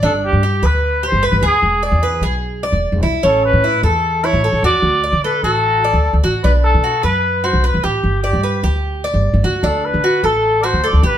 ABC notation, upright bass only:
X:1
M:4/4
L:1/16
Q:1/4=150
K:G
V:1 name="Upright bass" clef=bass
G,,,3 G,,3 D,,4- D,, G,,,2 G,,, D,, z | E,,,3 E,,3 B,,,4- B,,, E,,,2 E,,, B,,, z | A,,,3 A,,3 E,,4- E,, A,,,2 A,,, E,, z | D,,3 D,3 A,,,4- A,,, D,,2 D,, A,,, z |
B,,,3 B,,3 F,,4- F,, B,,,2 B,,, A,,, z | G,,,3 G,,3 D,,4- D,, G,,,2 G,,, D,, z | D,,3 D,3 A,,,4- A,,, D,,2 D,, A,,, z |]